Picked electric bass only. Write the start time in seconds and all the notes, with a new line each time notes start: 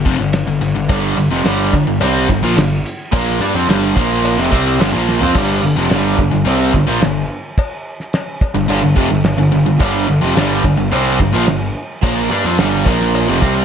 0.06 F1
0.19 G1
0.48 G1
0.61 G1
0.75 G1
0.90 G1
1.16 G1
1.31 F1
1.45 G1
1.74 G1
1.87 G1
2.01 C2
2.29 G1
2.42 A#1
2.57 G1
3.13 A#1
3.40 G2
3.54 F2
3.68 G1
3.97 A#1
4.38 F1
4.53 C2
4.80 G1
4.93 A#1
5.22 F2
5.36 G1
5.63 G1
5.77 F1
5.91 G1
6.19 G1
6.32 G1
6.45 C2
6.74 G1
6.88 A#1
7.02 G1
8.55 G1
8.69 G1
8.84 G1
8.97 F1
9.12 G1
9.40 G1
9.54 G1
9.67 G1
9.81 G1
10.09 G1
10.22 F1
10.37 G1
10.65 G1
10.79 G1
10.93 C2
11.20 G1
11.35 A#1
11.49 G1
12.03 A#1
12.32 G2
12.45 F2
12.59 G1
12.86 A#1
13.29 F1
13.42 C2